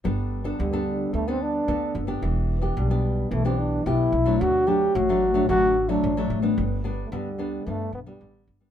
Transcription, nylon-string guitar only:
\new Staff \with { instrumentName = "Nylon-string guitar" } { \time 4/4 \key g \major \tempo 4 = 110 << { <b d' a'>8. <b d' a'>8 <b d' a'>4 <b d' a'>8. <b d' a'>8. <b d' g'>16~ | <b d' g'>8. <b d' g'>8 <b d' g'>4 <b d' g'>8. <b d' g'>8 r16 <fis a d'>16~ | <fis a d'>8 <fis a d'>8 r16 <fis a d'>8 <fis a d'>16 <fis a d'>8 r16 <fis a d'>8 <fis a d'>8 <g b d'>16~ | <g b d'>8 <g b d'>8 <g b d'>16 r16 <g b d'>8 <g b d'>8 r16 <g b d'>4 <g b d'>16 | } \\ { g4 d4 g4 d4 | e4 b,4 e4 b,4 | d4 a,4 d4 a,4 | g,4 d4 g,4 d4 | } >> }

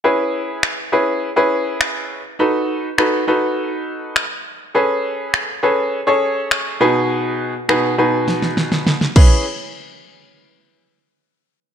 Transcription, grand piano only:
\new Staff \with { instrumentName = "Grand piano" } { \time 4/4 \key cis \minor \tempo 4 = 102 <cis' e' gis' b'>4~ <cis' e' gis' b'>16 r16 <cis' e' gis' b'>8 r16 <cis' e' gis' b'>4. r16 | <dis' fis' a' b'>8. r16 <dis' fis' a' b'>8 <dis' fis' a' b'>4. r4 | <cis' gis' a' b'>4~ <cis' gis' a' b'>16 r16 <cis' gis' a' b'>8 r16 <cis' gis' a' cis''>4~ <cis' gis' a' cis''>16 <b, dis' fis' gis' b'>8~ | <b, dis' fis' gis' b'>8. r16 <b, dis' fis' gis' b'>8 <b, dis' fis' gis' b'>4. r8 <cis' e' gis' b'>8 |
r1 | }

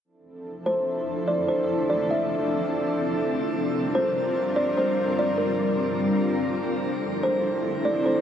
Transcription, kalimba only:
\new Staff \with { instrumentName = "Kalimba" } { \time 4/4 \key d \minor \tempo 4 = 146 r4. c''8 r4 d''8 c''8 | r8 d''8 e''4 r2 | r4. c''8 r4 d''8 c''8 | r8 d''8 bes'4 r2 |
r4. c''8 r4 d''8 c''8 | }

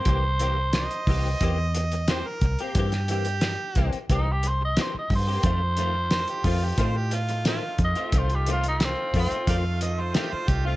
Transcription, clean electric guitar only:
\new Staff \with { instrumentName = "Clean electric guitar" } { \time 4/4 \key f \major \tempo 4 = 89 <e bes c' g'>16 r16 <e bes c' g'>16 r8. <e bes c' g'>16 r16 <e bes c' g'>16 r8. <e bes c' g'>16 r8 <bes c' g'>16 | <e bes c' g'>16 r16 <e bes c' g'>16 r8. <e bes c' g'>16 r16 <e bes c' g'>16 r8. <e bes c' g'>16 r8 <bes c' g'>16 | <ees a c' f'>16 r16 <ees a c' f'>16 r8. <ees a c' f'>16 r16 <ees a c' f'>16 r8. <ees a c' f'>16 r8 <a c' f'>16 | <ees a c' f'>16 r16 <ees a c' f'>16 r8. <ees a c' f'>16 r16 <ees a c' f'>16 r8. <ees a c' f'>16 r8 <a c' f'>16 | }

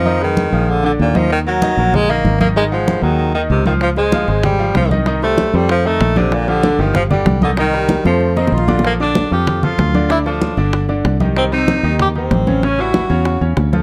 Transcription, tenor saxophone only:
\new Staff \with { instrumentName = "Tenor saxophone" } { \clef bass \time 4/4 \key bes \major \tempo 4 = 191 f8 ees4. d8 d8 bes,8 f8 | ees8 ges4. aes8 bes4 bes8 | aes8 f4 ees4 ees8 c8 ees8 | f8 aes4. g4 f8 r8 |
r8 a4 g8 f8 a4 c8 | bes,8 d4 ees8 f8 g4 d8 | ees4. f4. r4 | bes8 d'4 g'4 f'4. |
e'8 d'2 r4. | c'8 ees'4. g'8 c'4. | cis'8 ges'2 r4. | }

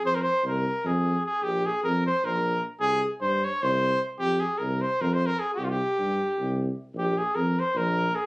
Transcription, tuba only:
\new Staff \with { instrumentName = "Tuba" } { \clef bass \time 7/8 \tempo 4 = 152 f,4 c,4 f,4. | bes,,4 f,4 bes,,4. | c,4 g,4 c,4. | f,4 c,4 f,4. |
c,4 g,4 c,4. | bes,,4 f,4 bes,,4. | }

